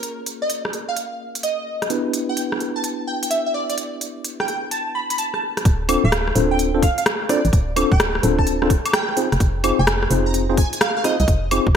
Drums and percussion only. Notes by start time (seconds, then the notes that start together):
0.03 closed hi-hat
0.26 closed hi-hat
0.50 closed hi-hat
0.65 cross-stick
0.73 closed hi-hat
0.96 closed hi-hat
1.35 closed hi-hat
1.43 closed hi-hat
1.82 cross-stick, closed hi-hat
1.90 closed hi-hat
2.13 closed hi-hat
2.37 closed hi-hat
2.52 cross-stick
2.60 closed hi-hat
2.84 closed hi-hat
3.23 closed hi-hat
3.31 closed hi-hat
3.70 closed hi-hat
3.78 closed hi-hat
4.01 closed hi-hat
4.24 closed hi-hat
4.40 cross-stick
4.48 closed hi-hat
4.71 closed hi-hat
5.10 closed hi-hat
5.18 closed hi-hat
5.34 cross-stick
5.57 cross-stick, closed hi-hat
5.65 kick, closed hi-hat
5.89 open hi-hat, high woodblock
6.12 cross-stick, closed hi-hat
6.28 cross-stick
6.35 open hi-hat
6.59 closed hi-hat
6.82 kick, open hi-hat
6.98 closed hi-hat
7.06 cross-stick, closed hi-hat
7.29 cross-stick, open hi-hat
7.45 closed hi-hat
7.53 kick, closed hi-hat
7.76 open hi-hat, high woodblock
7.92 kick
8.00 cross-stick, closed hi-hat
8.15 cross-stick
8.23 open hi-hat
8.38 kick
8.47 closed hi-hat
8.62 cross-stick
8.70 kick, open hi-hat
8.86 closed hi-hat, high woodblock
8.93 cross-stick, closed hi-hat
9.09 cross-stick
9.17 open hi-hat
9.32 cross-stick, closed hi-hat
9.40 kick, closed hi-hat
9.64 open hi-hat, high woodblock
9.87 cross-stick, closed hi-hat
10.03 cross-stick
10.11 open hi-hat
10.34 closed hi-hat
10.57 kick, open hi-hat
10.73 closed hi-hat
10.81 cross-stick, closed hi-hat
11.04 cross-stick, open hi-hat
11.20 closed hi-hat
11.28 kick, closed hi-hat
11.51 open hi-hat, high woodblock
11.67 kick